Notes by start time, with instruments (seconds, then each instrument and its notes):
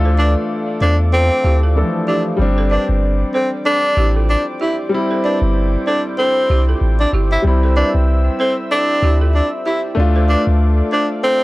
Already playing: sub bass D2, grand piano A3 D4 F4 A4, analog synth pad A4 D5 F5 D6
0.05 balafon A4 C5
0.18 tenor saxophone D4, balafon B4 D5
0.81 sub bass E2, tenor saxophone D4, balafon A4 C5
1.13 tenor saxophone C4, balafon F4 A4
1.44 sub bass D2, balafon E4 G4
1.63 balafon F4 A4
1.75 grand piano E3 A3 D4 A4
1.81 grand piano F3
2.08 tenor saxophone D4, balafon E4 G4
2.37 sub bass G1, grand piano G3 C4, analog synth pad C5 D5 G5 D6
2.42 grand piano D4
2.58 balafon A4 C5
2.71 tenor saxophone D4, balafon B4 D5
2.89 sub bass G1
3.34 tenor saxophone C4, balafon A4 C5
3.66 tenor saxophone D4, balafon D4 A4
3.97 sub bass A1, balafon E4 G4
4.16 balafon F4 A4
4.30 tenor saxophone D4
4.61 tenor saxophone E4, balafon E4 G4
4.89 grand piano G3 C4
4.94 grand piano E4
5.11 balafon A4 C5
5.24 tenor saxophone D4, balafon B4 D5
5.42 sub bass G1
5.87 tenor saxophone D4, balafon A4 C5
6.19 tenor saxophone C4, balafon D4 A4
6.50 sub bass C2, balafon E4 G4
6.69 balafon F4 A4
6.81 sub bass A1
7.00 tenor saxophone D4
7.13 sub bass G1, balafon E4 G4
7.32 tenor saxophone E4
7.42 sub bass C2, grand piano G3 C4, analog synth pad E5 E6
7.47 grand piano E4
7.63 balafon A4 C5
7.76 tenor saxophone D4, balafon B4 D5
7.95 sub bass C2
8.40 tenor saxophone C4, balafon A4 C5
8.71 tenor saxophone D4, balafon E4 A4
9.03 sub bass D2, balafon E4 G4
9.21 balafon F4 A4
9.35 tenor saxophone D4
9.66 tenor saxophone E4, balafon E4 G4
9.95 sub bass D2, grand piano A3 D4, analog synth pad A4 D5 F5 D6
10.00 grand piano F4
10.16 balafon A4 C5
10.29 tenor saxophone D4, balafon B4 D5
10.47 sub bass D2
10.92 tenor saxophone D4, balafon A4 C5
11.24 tenor saxophone C4, balafon F4 A4